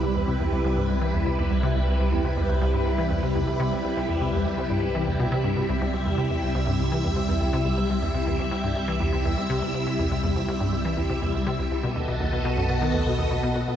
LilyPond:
<<
  \new Staff \with { instrumentName = "String machine" } { \time 4/4 \key c \major \tempo 4 = 122 << { b'1~ | b'1~ | b'2 e''2~ | e''1~ |
e''1~ | e''1 | dis''1 | } \\ { <c g e'>1~ | <c g e'>1~ | <c g e'>1~ | <c g e'>1~ |
<c g e'>1~ | <c g e'>1 | <b fis' a'>1 | } >> }
  \new Staff \with { instrumentName = "Synth arpeggio sound" } { \clef bass \time 4/4 \key c \major c,16 e,16 c16 e,16 c,16 c,16 g,16 c,16 e16 e,16 c16 e,16 c,16 c16 c,16 c,16 | c,16 e,16 c16 e,16 c,16 c,16 g,16 c,16 e16 e,16 c16 e,16 c,16 c16 c,16 c,16 | c,16 e,16 c16 e,16 c,16 c,16 g,16 c,16 e16 e,16 b,16 c16 g,16 c16 c,16 c,16 | c,16 e,16 c16 e,16 c,16 c,16 g,16 c,16 e16 e,16 c16 e,16 c,16 c16 c,16 c,16 |
c,16 e,16 c16 e,16 c,16 c,16 g,16 c,16 e16 e,16 c16 e,16 c,16 c16 c,16 c,16 | c,16 e,16 c16 e,16 c,16 c,16 g,16 c,16 e16 e,16 c16 e,16 c,16 c16 c,16 c,16 | b,16 dis,16 b,16 dis,16 b,16 b,16 fis,16 b,16 dis16 dis,16 b,16 dis,16 b,16 b,16 b,16 b,16 | }
  \new Staff \with { instrumentName = "Sub bass" } { \clef bass \time 4/4 \key c \major c,1~ | c,1~ | c,1 | c,1~ |
c,1~ | c,1 | b,,1 | }
>>